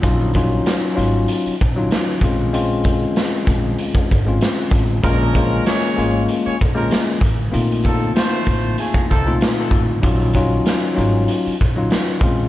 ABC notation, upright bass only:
X:1
M:4/4
L:1/8
Q:"Swing 16ths" 1/4=96
K:Ebdor
V:1 name="Upright bass" clef=bass
B,,,2 z A,,, z B,,, z B,,,- | B,,,2 z B,,, z A,,, z =A,,, | B,,,2 z A,,, z B,,, z =A,,, | B,,,2 z =A,,, z C,, z A,,, |
B,,,2 z A,,, z B,,, z B,,, |]